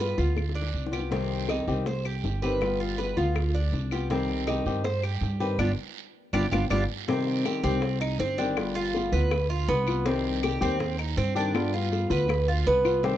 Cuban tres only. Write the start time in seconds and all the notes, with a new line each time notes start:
0.00 B4
0.18 F4
0.55 D4
0.93 G4
1.12 C4
1.49 D#4
1.87 C5
2.05 G4
2.42 B4
2.80 F4
2.98 B4
3.17 F4
3.54 D4
3.92 G4
4.10 C4
4.47 D#4
4.84 C5
5.03 G4
5.40 B4
5.59 D4 F4 G4
6.33 D4 F4 G4
6.52 D4 F4 G4
6.70 D4 F4 G4
7.08 C4
7.45 G4
7.64 C4
8.01 D#4
8.20 C4
8.38 D4
8.75 F4
9.12 B4
9.50 F4
9.68 B3
10.06 C4
10.43 G4
10.62 C4
10.99 D#4
11.17 C4
11.36 D4
11.74 F4
12.11 B4
12.48 F4
12.67 B3
13.04 C4